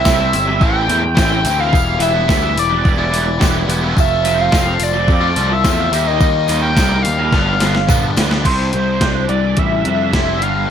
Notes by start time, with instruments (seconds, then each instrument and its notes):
Already playing: analog synth lead E5
0.05 picked electric bass C2, distorted electric guitar C3 G3 C4 E4, kick, snare, tambourine
0.19 distorted electric guitar G3 C4 E4, snare
0.33 picked electric bass G1, snare, open hi-hat, tambourine
0.47 overdriven electric guitar C3 G3 C4 E4, muted distorted electric guitar stroke
0.60 picked electric bass A1, distorted electric guitar A2 E3 A3 C4 E4, analog synth lead G5, kick, tambourine
0.74 distorted electric guitar A3 C4 E4
0.87 picked electric bass E2, distorted electric guitar E3 A3 C4 E4, open hi-hat
1.02 muted distorted electric guitar stroke, muted overdriven electric guitar stroke
1.15 picked electric bass A1, distorted electric guitar A2 E3 A3 C4 E4, analog synth lead G5, kick, snare, tambourine
1.44 picked electric bass D2, distorted electric guitar E3 A3 C4 E4, open hi-hat, tambourine
1.59 overdriven electric guitar E3, distorted electric guitar A3 C4 E4, analog synth lead F5
1.72 picked electric bass E1, distorted electric guitar E3 G3 B3 E4, kick, tambourine
1.99 picked electric bass E1, overdriven electric guitar E3 G3 B3 E4, analog synth lead E5, open hi-hat, tambourine
2.14 distorted electric guitar G3 B3 E4
2.27 picked electric bass D2, distorted electric guitar E3 G3 B3 E4, kick, snare, tambourine
2.41 distorted electric guitar G3 B3 E4, snare
2.56 picked electric bass E1, analog synth lead D5, open hi-hat, tambourine
2.70 overdriven electric guitar E3 G3 B3 E4, muted distorted electric guitar stroke
2.84 picked electric bass E1, overdriven electric guitar E3 G3 B3 E4, kick, tambourine
2.98 distorted electric guitar G3 B3 E4
3.11 distorted electric guitar E3 G3 B3 E4, open hi-hat
3.26 muted distorted electric guitar stroke, muted overdriven electric guitar stroke
3.38 picked electric bass E1, distorted electric guitar E3 G3 B3 E4, kick, snare, tambourine
3.67 picked electric bass E1, distorted electric guitar E3 G3 B3 E4, open hi-hat, tambourine
3.81 overdriven electric guitar E3, distorted electric guitar G3 B3 E4
3.95 distorted electric guitar F3 A3 C4 F4, kick, tambourine
4.00 analog synth lead E5
4.25 overdriven electric guitar F3 A3 C4 F4, open hi-hat, tambourine
4.37 distorted electric guitar A3 C4 F4, analog synth lead F5
4.51 picked electric bass F1, distorted electric guitar F3 A3 C4 F4, kick, snare, tambourine
4.66 distorted electric guitar A3 C4 F4, snare
4.80 picked electric bass F1, analog synth lead D5, open hi-hat, tambourine
4.93 overdriven electric guitar F3 A3 C4 F4, muted distorted electric guitar stroke
5.07 picked electric bass F2, overdriven electric guitar F3 A3 C4 F4, kick, tambourine
5.21 distorted electric guitar A3 C4 F4
5.35 picked electric bass C2, distorted electric guitar F3 A3 C4 F4, open hi-hat
5.50 analog synth lead E5, muted distorted electric guitar stroke, muted overdriven electric guitar stroke
5.63 picked electric bass E2, distorted electric guitar F3 A3 C4 F4, kick, snare, tambourine
5.91 picked electric bass D#2, distorted electric guitar D#3 G3 A#3 D#4, open hi-hat, tambourine
6.05 overdriven electric guitar D#3, distorted electric guitar G3 A#3 D#4, analog synth lead D#5
6.19 picked electric bass D#2, distorted electric guitar D#3 G3 A#3 D#4, kick, tambourine
6.48 picked electric bass D#2, overdriven electric guitar D#3 G3 A#3 D#4, open hi-hat, tambourine
6.62 distorted electric guitar G3 A#3 D#4, analog synth lead G5
6.77 picked electric bass C2, distorted electric guitar D#3 G3 A#3 D#4, kick, snare, tambourine
6.91 distorted electric guitar G3 A#3 D#4, snare
7.02 picked electric bass D#2, analog synth lead F5, open hi-hat
7.18 overdriven electric guitar D#3 G3 A#3 D#4, muted distorted electric guitar stroke
7.32 picked electric bass G1, distorted electric guitar G2 D3 G3 B3 D4, overdriven electric guitar F3, kick, snare, tambourine
7.47 distorted electric guitar G3 B3 D4
7.60 distorted electric guitar D3 G3 B3 D4, overdriven electric guitar F3, snare, open hi-hat, tambourine
7.74 muted distorted electric guitar stroke, muted overdriven electric guitar stroke, snare
7.87 picked electric bass G1, distorted electric guitar G2 D3 G3 B3 D4, overdriven electric guitar F3, kick, mid tom, tambourine
8.16 picked electric bass D2, distorted electric guitar D3 G3 B3 D4, overdriven electric guitar F3, snare, open hi-hat, tambourine
8.30 overdriven electric guitar D3 F3, distorted electric guitar G3 B3 D4, snare
8.44 picked electric bass C2, distorted electric guitar C3 G3 C4, analog synth lead C5, kick, closed hi-hat, crash
8.73 picked electric bass C2, distorted electric guitar C3 G3, overdriven electric guitar E4, closed hi-hat
9.00 picked electric bass C2, distorted electric guitar C3 G3, overdriven electric guitar D4, kick, snare, closed hi-hat
9.28 picked electric bass C2, distorted electric guitar C3 G3, overdriven electric guitar E3, analog synth lead D5, closed hi-hat
9.57 picked electric bass A1, distorted electric guitar C3 G3, analog synth lead E5, kick, closed hi-hat
9.85 picked electric bass F2, distorted electric guitar C3 G3, overdriven electric guitar D4, closed hi-hat
10.12 picked electric bass F1, distorted electric guitar C3 G3 C4, overdriven electric guitar E4, kick, snare, closed hi-hat
10.40 picked electric bass G1, distorted electric guitar G2 D3 G3, analog synth lead F5, closed hi-hat